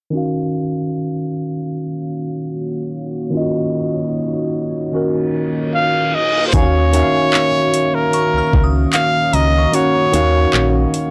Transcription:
0.10 tine electric piano D#3 C#4, ambient pad A#3 D#4 F#4 C#5 F5
0.15 tine electric piano F#4 F5
3.30 tine electric piano D#3 C#4, ambient pad D#5
3.35 tine electric piano F4 D#5
3.41 tine electric piano F#4
4.92 tine electric piano D#3 C#4 F#4 A#4, reverse cymbal
5.74 trumpet F5
6.15 trumpet D#5
6.48 trumpet C5
6.52 fm bass D#2, tine electric piano D#3 C#4 F#4 F5, ambient pad D#3 A#3 C#4 F#4 F5, trumpet C#5, synth bell G#5, kick, closed hi-hat
6.92 tine electric piano D#3 C#4 F#4 E5, closed hi-hat
7.02 tine electric piano F5
7.34 clap
7.74 closed hi-hat
7.95 trumpet A#4
8.13 synth bell C#6, closed hi-hat
8.34 fm bass C#2
8.38 synth bell F6
8.53 fm bass C#2, kick
8.64 synth bell D#6
8.93 trumpet F5, clap, closed hi-hat
9.33 fm bass C#2, trumpet D#5, synth bell A#5, closed hi-hat
9.58 synth bell C#6
9.72 tine electric piano D#3 C#4 F#4 F#5, ambient pad D#4, trumpet C#5, closed hi-hat
10.12 fm bass D#2, tine electric piano D#3 C#4 F#4 F5, closed hi-hat
10.54 fm bass A#1, clap
10.94 closed hi-hat

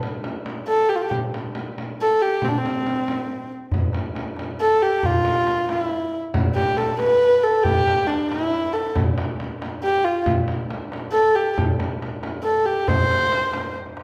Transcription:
0.03 frame drum
0.24 frame drum
0.46 frame drum
0.67 kamancheh A4
0.89 kamancheh G4
0.96 kamancheh F4
1.02 kamancheh G4
1.11 frame drum
1.34 frame drum
1.55 frame drum
1.78 frame drum
2.01 kamancheh A4
2.22 kamancheh G4
2.42 kamancheh C4, frame drum
2.48 kamancheh D4
2.58 kamancheh C4
2.66 frame drum
2.87 frame drum
3.08 frame drum
3.72 tombak dum, frame drum
3.93 tombak tek, frame drum
4.15 tombak tek, frame drum
4.37 tombak tek, frame drum
4.61 kamancheh A4
4.81 kamancheh G4, tombak ka
5.03 kamancheh F4, frame drum, tombak dum
5.25 tombak tek, frame drum
5.47 frame drum
5.69 kamancheh E4, tombak tek, frame drum
6.13 tombak ka
6.34 frame drum, tombak dum
6.55 kamancheh G4, tombak tek, frame drum
6.77 kamancheh A4, tombak tek, frame drum
6.99 kamancheh B4, tombak tek, frame drum
7.43 kamancheh A4, tombak ka
7.63 kamancheh G4, tombak dum, frame drum
7.87 tombak tek, frame drum
8.07 kamancheh D4, tombak tek, frame drum
8.28 kamancheh E4, tombak tek, frame drum
8.54 tombak tek
8.64 tombak ka
8.73 kamancheh A4, tombak tek
8.86 tombak ka
8.95 frame drum, tombak dum
9.18 tombak tek, frame drum
9.40 frame drum
9.62 tombak tek, frame drum
9.83 kamancheh G4
10.04 kamancheh F4, tombak ka
10.26 frame drum, tombak dum
10.48 frame drum
10.70 tombak tek, frame drum
10.92 tombak tek, frame drum
11.12 kamancheh A4
11.35 kamancheh G4, tombak ka
11.58 frame drum, tombak dum
11.80 tombak tek, frame drum
12.02 frame drum
12.23 tombak tek, frame drum
12.43 kamancheh A4
12.65 kamancheh G4, tombak ka
12.88 kamancheh C5, tombak dum, frame drum
13.10 tombak tek, frame drum
13.32 tombak tek, frame drum
13.53 tombak tek, frame drum
13.75 tombak tek
13.86 tombak ka
13.97 tombak tek

